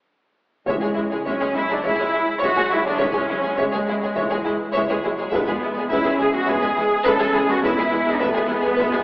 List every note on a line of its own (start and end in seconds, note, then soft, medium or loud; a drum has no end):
0.66 0.72 C#2 medium
0.66 1.51 C#3 medium
0.66 1.23 E3 medium
0.66 1.22 G#3 medium
0.66 0.74 G#3 soft
0.66 0.72 C#5 medium
0.66 0.74 E5 medium
0.66 taiko medium
0.66 sub drop medium
0.81 0.88 C#2 soft
0.81 0.89 G#3 soft
0.81 0.87 G#4 soft
0.81 0.89 C#5 soft
0.94 1.02 C#2 soft
0.94 1.03 G#3 soft
0.94 1.01 E4 soft
0.94 1.03 G#4 soft
1.10 1.16 C#2 soft
1.10 1.18 G#3 soft
1.10 1.17 G#4 soft
1.10 1.17 C#5 soft
1.25 1.31 C#2 medium
1.25 1.84 F#3 medium
1.25 1.32 G#3 medium
1.25 1.55 C#4 medium
1.25 1.31 C#5 medium
1.25 1.32 E5 medium
1.25 taiko medium
1.40 1.46 C#2 soft
1.40 1.47 G#3 soft
1.40 1.46 G#4 soft
1.40 1.46 C#5 soft
1.54 1.61 C#2 soft
1.54 1.62 G#3 soft
1.54 1.60 E4 soft
1.54 1.70 E4 medium
1.54 1.62 G#4 soft
1.68 1.75 C#2 soft
1.68 1.76 G#3 soft
1.68 1.85 D4 medium
1.68 1.74 G#4 soft
1.68 1.76 C#5 soft
1.81 1.90 C#2 medium
1.81 2.42 G#3 medium
1.81 1.91 G#3 medium
1.81 2.41 E4 medium
1.81 1.88 C#5 medium
1.81 1.90 E5 medium
1.81 taiko medium
1.95 2.04 C#2 soft
1.95 2.02 G#4 soft
1.95 2.05 C#5 soft
2.00 2.05 G#3 soft
2.10 2.20 C#2 soft
2.10 2.17 E4 medium
2.10 2.19 G#4 soft
2.15 2.20 G#3 medium
2.39 2.71 F#4 medium
2.39 2.45 C#5 medium
2.39 2.48 E5 medium
2.39 taiko medium
2.43 2.49 C#2 medium
2.43 3.01 F#3 medium
2.43 2.49 G#3 medium
2.56 2.64 C#2 soft
2.56 2.64 G#3 soft
2.56 2.62 G#4 soft
2.56 2.63 C#5 medium
2.70 2.79 C#2 soft
2.70 2.78 G#3 medium
2.70 2.76 E4 soft
2.70 2.86 E4 medium
2.70 2.78 G#4 medium
2.85 2.94 C#2 soft
2.85 2.93 G#3 medium
2.85 3.01 D4 medium
2.85 2.91 G#4 medium
2.85 2.92 C#5 soft
2.97 3.29 E3 medium
2.97 3.07 G#3 medium
2.97 3.58 C#4 medium
2.97 3.04 C#5 medium
2.97 3.06 E5 medium
2.97 taiko medium
3.02 3.07 C#2 medium
3.12 3.19 G#4 soft
3.12 3.21 C#5 soft
3.16 3.22 C#2 soft
3.16 3.22 G#3 soft
3.28 3.36 C#2 soft
3.28 3.58 F#3 medium
3.28 3.36 G#3 soft
3.28 3.34 E4 soft
3.28 3.35 G#4 soft
3.42 3.50 C#2 soft
3.42 3.48 G#4 soft
3.42 3.49 C#5 soft
3.46 3.51 G#3 soft
3.57 3.65 C#2 medium
3.57 4.16 G#3 medium
3.57 5.04 G#3 medium
3.57 3.66 G#3 medium
3.57 3.63 C#5 medium
3.57 3.63 E5 medium
3.57 taiko medium
3.72 3.80 C#2 soft
3.72 3.80 G#3 soft
3.72 3.78 G#4 soft
3.72 3.78 C#5 soft
3.86 3.95 C#2 soft
3.86 3.95 G#3 medium
3.86 3.94 E4 soft
3.86 3.92 G#4 soft
4.01 4.08 C#2 soft
4.01 4.08 G#4 soft
4.01 4.07 C#5 soft
4.05 4.10 G#3 soft
4.13 4.23 C#2 medium
4.13 4.73 E3 medium
4.13 4.21 C#5 medium
4.13 4.20 E5 medium
4.13 taiko medium
4.19 4.24 G#3 medium
4.29 4.37 C#2 medium
4.29 4.38 G#3 soft
4.29 4.36 G#4 medium
4.29 4.35 C#5 soft
4.44 4.52 C#2 soft
4.44 4.52 G#3 medium
4.44 4.51 E4 soft
4.44 4.50 G#4 medium
4.73 4.80 C#2 medium
4.73 5.03 E3 medium
4.73 4.82 G#3 medium
4.73 4.79 C#5 medium
4.73 4.80 E5 medium
4.73 taiko medium
4.87 4.95 C#2 soft
4.87 4.96 G#3 medium
4.87 4.95 G#4 medium
4.87 4.93 C#5 medium
5.03 5.10 C#2 soft
5.03 5.32 F#3 medium
5.03 5.11 G#3 medium
5.03 5.11 E4 soft
5.03 5.09 G#4 medium
5.17 5.24 C#2 medium
5.17 5.25 G#3 medium
5.17 5.24 G#4 medium
5.17 5.23 C#5 medium
5.31 5.38 E2 medium
5.31 5.90 G#3 medium
5.31 5.40 G#3 medium
5.31 5.86 B3 medium
5.31 5.40 B4 medium
5.31 5.37 E5 medium
5.31 taiko medium
5.47 5.53 E2 soft
5.47 5.54 G#3 soft
5.47 5.53 G#4 soft
5.47 5.53 B4 soft
5.61 5.68 E2 soft
5.61 5.69 G#3 medium
5.61 5.69 E4 medium
5.61 5.67 G#4 soft
5.74 5.81 E2 medium
5.74 5.83 G#4 medium
5.74 5.80 B4 soft
5.78 5.83 G#3 medium
5.89 5.96 E2 medium
5.89 5.97 G#3 medium
5.89 6.47 C#4 medium
5.89 6.19 E4 medium
5.89 5.97 B4 medium
5.89 5.95 E5 medium
5.89 taiko medium
6.03 6.10 E2 medium
6.03 6.11 G#3 medium
6.03 6.10 G#4 medium
6.03 6.09 B4 soft
6.18 6.25 E2 medium
6.18 6.25 G#3 medium
6.18 6.25 E4 soft
6.18 6.24 G#4 soft
6.18 6.33 G#4 medium
6.30 6.39 E2 soft
6.30 6.39 G#4 medium
6.30 6.36 B4 medium
6.34 6.40 G#3 soft
6.34 6.49 F#4 medium
6.45 6.53 E2 medium
6.45 6.54 G#3 medium
6.45 6.77 B3 medium
6.45 7.06 G#4 medium
6.45 6.54 B4 medium
6.45 6.51 E5 medium
6.45 taiko medium
6.60 6.67 E2 soft
6.60 6.69 G#3 medium
6.60 6.69 G#4 medium
6.60 6.66 B4 medium
6.76 6.82 E2 soft
6.76 6.84 G#3 medium
6.76 7.07 G#3 medium
6.76 6.82 E4 medium
6.76 6.83 G#4 medium
7.03 7.11 E2 medium
7.03 7.12 G#3 medium
7.03 7.63 C#4 medium
7.03 7.35 A4 medium
7.03 7.10 B4 medium
7.03 7.11 E5 medium
7.03 taiko medium
7.20 7.25 E2 medium
7.20 7.26 G#3 medium
7.20 7.26 G#4 medium
7.20 7.27 B4 medium
7.34 7.40 E2 medium
7.34 7.40 G#3 medium
7.34 7.40 E4 medium
7.34 7.49 G#4 medium
7.34 7.41 G#4 medium
7.47 7.54 E2 medium
7.47 7.53 G#3 medium
7.47 7.64 F#4 medium
7.47 7.55 G#4 medium
7.47 7.56 B4 medium
7.62 7.69 E2 medium
7.62 7.68 G#3 medium
7.62 8.20 B3 medium
7.62 8.20 E4 medium
7.62 7.69 B4 medium
7.62 7.70 E5 medium
7.62 taiko medium
7.77 7.83 E2 medium
7.77 7.83 G#3 medium
7.77 7.84 G#4 medium
7.77 7.84 B4 soft
7.92 7.98 E2 medium
7.92 7.97 G#3 medium
7.92 7.98 E4 medium
7.92 7.99 G#4 medium
8.05 8.11 E2 medium
8.05 8.12 G#3 soft
8.05 8.13 G#4 medium
8.05 8.13 B4 medium
8.19 8.26 E2 medium
8.19 8.26 G#3 medium
8.19 8.50 A3 medium
8.19 9.04 B3 medium
8.19 8.25 B4 medium
8.19 8.26 E5 medium
8.19 taiko medium
8.33 8.40 E2 medium
8.33 8.41 G#3 medium
8.33 8.39 G#4 medium
8.33 8.42 B4 medium
8.47 8.56 E2 medium
8.47 8.55 G#3 soft
8.47 9.04 G#3 medium
8.47 8.53 E4 medium
8.47 8.55 G#4 medium
8.61 8.70 E2 medium
8.61 8.70 G#3 medium
8.61 8.67 G#4 medium
8.66 8.72 B4 soft
8.75 8.84 E2 medium
8.75 8.84 G#3 medium
8.75 8.81 B4 medium
8.75 taiko medium
8.80 8.86 E5 medium
8.92 8.98 E2 medium
8.92 8.99 G#3 soft
8.92 8.98 G#4 medium
8.92 8.99 B4 medium